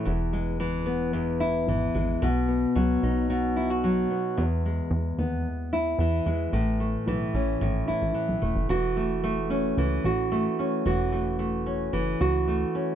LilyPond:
<<
  \new Staff \with { instrumentName = "Nylon-string guitar" } { \time 4/4 \key fis \dorian \tempo 4 = 111 e,8 gis8 e8 b8 e,8 e'8 e8 gis8 | b,8 b8 fis8 dis'8 b,8 e'16 fis'16 fis8 b8 | e,8 gis4 b4 e'8 e8 gis8 | a,8 a8 e8 cis'8 a,8 e'8 e8 a8 |
<e fis'>8 a8 a8 cis'8 e8 fis'8 a8 cis'8 | <e fis'>8 a8 a8 cis'8 e8 fis'8 a8 cis'8 | }
  \new Staff \with { instrumentName = "Analog synth bass" } { \clef bass \time 4/4 \key fis \dorian e,,4 fis,,8 e,,4. gis,,8 gis,,8 | b,,4 cis,8 b,,2 r8 | e,4 e,8 dis,4. e,8 e,8 | a,,4 b,,8 a,,8 gis,,8 a,,16 a,,16 r16 b,,16 e,,16 fis,,16 |
e,,2 cis,8 a,,4 r8 | e,,2 fis,,8 cis,4 r8 | }
>>